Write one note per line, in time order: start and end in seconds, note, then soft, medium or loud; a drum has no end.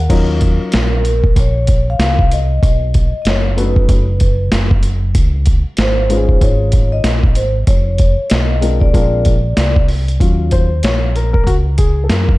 0.00 0.27 F#5 medium
0.09 0.58 D#2 medium
0.09 0.99 F#3 medium
0.09 0.99 C#4 medium
0.09 0.99 D#4 medium
0.09 1.00 F4 medium
0.09 1.00 A#4 medium
0.09 kick loud
0.09 closed hi-hat loud
0.09 crash medium
0.41 kick medium
0.41 closed hi-hat medium
0.61 muted fingered electric bass stroke soft
0.72 1.33 A#1 medium
0.72 snare loud
0.72 closed hi-hat medium
0.77 1.40 A#4 medium
1.05 closed hi-hat medium
1.24 kick medium
1.36 1.96 A#1 loud
1.36 1.90 C#5 medium
1.36 kick medium
1.36 closed hi-hat medium
1.67 kick medium
1.67 closed hi-hat medium
1.90 2.34 F5 loud
1.99 2.59 C2 medium
1.99 snare loud
1.99 closed hi-hat medium
2.19 kick medium
2.31 3.21 D#5 loud
2.31 closed hi-hat medium
2.63 3.11 B1 medium
2.63 kick loud
2.63 closed hi-hat loud
2.94 kick medium
2.94 closed hi-hat medium
3.13 muted fingered electric bass stroke soft
3.22 3.85 F#1 medium
3.22 3.26 D#5 medium
3.22 closed hi-hat medium
3.27 3.59 C#5 medium
3.27 snare loud
3.56 4.03 A3 medium
3.56 4.04 C#4 medium
3.56 3.65 D4 soft
3.56 4.04 F#4 medium
3.56 4.04 B4 medium
3.56 4.49 B4 medium
3.56 closed hi-hat medium
3.63 4.07 D#4 medium
3.76 kick medium
3.89 4.49 F#1 loud
3.89 kick medium
3.89 closed hi-hat medium
4.20 kick medium
4.20 closed hi-hat medium
4.52 5.12 F#1 medium
4.52 snare loud
4.52 closed hi-hat loud
4.71 kick loud
4.83 closed hi-hat medium
5.15 5.63 C#2 medium
5.15 kick loud
5.15 closed hi-hat loud
5.46 kick medium
5.46 closed hi-hat medium
5.65 muted fingered electric bass stroke soft
5.77 6.38 G#1 medium
5.77 6.38 C5 medium
5.77 snare loud
5.77 closed hi-hat medium
6.09 6.99 G#3 medium
6.09 6.99 C#4 medium
6.09 7.00 D#4 medium
6.09 7.00 F4 medium
6.09 6.18 B4 medium
6.09 closed hi-hat medium
6.17 7.03 G#4 medium
6.29 kick medium
6.41 7.01 G#1 loud
6.41 6.94 C#5 loud
6.41 kick medium
6.41 closed hi-hat medium
6.72 kick medium
6.72 closed hi-hat medium
6.92 7.38 D#5 loud
7.04 7.36 A#1 medium
7.04 snare loud
7.04 closed hi-hat medium
7.23 kick loud
7.35 7.66 G#1 medium
7.35 7.51 C5 loud
7.35 closed hi-hat medium
7.67 8.16 F1 loud
7.67 8.33 C#5 loud
7.67 kick loud
7.67 closed hi-hat medium
7.98 kick medium
7.98 closed hi-hat medium
8.19 muted fingered electric bass stroke soft
8.30 8.91 B1 medium
8.30 8.82 D#5 medium
8.30 snare loud
8.30 closed hi-hat medium
8.61 8.86 G#3 medium
8.61 8.86 C4 medium
8.61 8.86 D4 medium
8.61 8.86 F4 medium
8.61 8.86 A#4 medium
8.61 closed hi-hat medium
8.80 9.84 D5 medium
8.80 kick medium
8.93 9.54 A#1 loud
8.93 9.33 G#3 medium
8.93 9.33 C4 medium
8.93 9.33 D4 medium
8.93 9.33 F4 medium
8.93 9.34 A#4 medium
8.93 kick loud
8.93 closed hi-hat medium
9.25 kick medium
9.25 closed hi-hat medium
9.57 10.17 C2 medium
9.57 snare loud
9.57 closed hi-hat medium
9.76 kick loud
9.88 open hi-hat medium
10.08 closed hi-hat medium
10.20 10.80 D#2 medium
10.20 10.64 F#3 medium
10.20 10.65 C#4 soft
10.20 10.65 F4 medium
10.20 kick loud
10.20 closed hi-hat medium
10.51 10.85 C5 medium
10.51 kick medium
10.51 closed hi-hat medium
10.83 11.44 A#1 medium
10.83 11.13 C#5 medium
10.83 snare loud
10.83 closed hi-hat medium
11.16 11.32 A#4 medium
11.16 closed hi-hat medium
11.33 11.47 A#4 loud
11.33 kick medium
11.47 12.07 C#2 medium
11.47 11.54 F#4 loud
11.47 kick medium
11.47 closed hi-hat medium
11.78 12.05 G#4 medium
11.78 kick medium
11.78 closed hi-hat medium
12.04 12.10 A4 medium
12.09 12.38 F#2 medium
12.09 12.38 A#4 medium
12.09 snare loud
12.09 closed hi-hat medium
12.29 kick loud